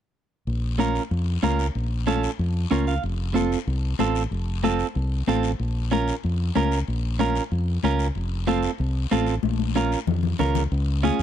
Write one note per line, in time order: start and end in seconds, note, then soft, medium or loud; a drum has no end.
0.47 0.98 A#1 medium
0.47 high conga soft
0.47 long guiro medium
0.79 1.02 C#4 medium
0.79 1.02 F4 medium
0.79 1.02 A#4 medium
0.79 high conga medium
0.79 short guiro medium
0.95 short guiro medium
1.11 1.37 F2 loud
1.11 high conga soft
1.11 long guiro medium
1.43 1.69 C#2 medium
1.43 1.65 C#4 medium
1.43 1.66 F4 medium
1.43 1.66 A#4 medium
1.43 high conga medium
1.43 short guiro medium
1.59 short guiro medium
1.75 2.26 A#1 medium
1.75 high conga soft
1.75 long guiro medium
2.07 2.30 C#4 medium
2.07 2.30 F4 medium
2.07 2.30 A4 medium
2.07 high conga medium
2.07 short guiro medium
2.23 short guiro medium
2.39 2.65 F2 medium
2.39 high conga soft
2.39 long guiro medium
2.71 2.97 C#2 medium
2.71 2.94 C#4 medium
2.71 2.94 F4 medium
2.71 2.94 A#4 medium
2.71 2.86 C#5 soft
2.71 high conga medium
2.71 short guiro medium
2.87 3.02 F5 medium
2.87 short guiro medium
3.03 3.55 F1 medium
3.03 high conga soft
3.03 long guiro medium
3.34 3.57 C4 medium
3.34 3.58 F4 medium
3.34 3.58 A4 medium
3.34 high conga medium
3.34 short guiro medium
3.52 short guiro medium
3.67 3.93 C2 loud
3.67 high conga soft
3.67 long guiro medium
3.99 4.25 A1 medium
3.99 4.22 C4 medium
3.99 4.22 F4 medium
3.99 4.22 A4 medium
3.99 high conga medium
3.99 short guiro medium
4.15 short guiro medium
4.31 4.82 F1 medium
4.31 high conga soft
4.31 long guiro medium
4.63 4.86 C4 medium
4.63 4.86 F4 medium
4.63 4.86 A4 medium
4.63 high conga medium
4.63 short guiro medium
4.79 short guiro medium
4.95 5.21 C2 loud
4.95 high conga soft
4.95 long guiro medium
5.27 5.53 A1 medium
5.27 5.50 C4 medium
5.27 5.50 F4 medium
5.27 5.50 A4 medium
5.27 high conga medium
5.27 short guiro medium
5.43 short guiro medium
5.60 6.11 A#1 medium
5.60 high conga soft
5.60 long guiro medium
5.91 6.14 C#4 medium
5.91 6.14 F4 medium
5.91 6.14 A#4 medium
5.91 high conga medium
5.91 short guiro medium
6.08 short guiro medium
6.24 6.50 F2 medium
6.24 high conga soft
6.24 long guiro medium
6.55 6.82 C#2 medium
6.55 6.78 C#4 medium
6.55 6.78 F4 medium
6.55 6.78 A#4 medium
6.55 high conga medium
6.55 short guiro medium
6.72 short guiro medium
6.88 7.39 A#1 medium
6.88 high conga soft
6.88 long guiro medium
7.19 7.42 C#4 medium
7.19 7.42 F4 medium
7.19 7.42 A#4 medium
7.19 high conga medium
7.19 short guiro medium
7.36 short guiro medium
7.52 7.77 F2 loud
7.52 high conga soft
7.52 long guiro medium
7.83 8.09 C#2 medium
7.83 8.06 C#4 medium
7.83 8.06 F4 medium
7.83 8.06 A#4 medium
7.83 high conga medium
7.83 short guiro medium
7.99 short guiro medium
8.15 8.67 F1 medium
8.15 high conga soft
8.15 long guiro medium
8.47 8.70 C4 medium
8.47 8.70 F4 medium
8.47 8.70 A4 medium
8.47 high conga medium
8.47 short guiro medium
8.63 short guiro medium
8.78 9.05 C2 loud
8.78 high conga soft
8.78 long guiro medium
9.11 9.37 A1 medium
9.11 9.34 C4 medium
9.11 9.34 F4 medium
9.11 9.34 A4 medium
9.11 high conga medium
9.11 short guiro medium
9.27 short guiro medium
9.43 9.94 A#1 medium
9.43 high conga loud
9.43 long guiro medium
9.59 high conga medium
9.75 9.98 C#4 medium
9.75 9.98 F4 medium
9.75 9.98 A#4 medium
9.75 high conga medium
9.75 short guiro medium
9.92 short guiro medium
10.07 10.33 F2 medium
10.07 low conga loud
10.07 long guiro medium
10.23 low conga medium
10.39 10.65 C#2 medium
10.39 10.62 C#4 medium
10.39 10.62 F4 medium
10.39 10.62 A#4 medium
10.39 low conga medium
10.39 short guiro medium
10.55 low conga medium
10.55 short guiro medium
10.72 11.10 C#2 loud
10.72 high conga soft
10.72 long guiro medium
11.03 11.23 C#4 medium
11.03 11.23 F4 medium
11.03 11.23 G#4 medium
11.03 high conga medium
11.03 short guiro medium
11.19 11.23 F2 medium
11.19 short guiro medium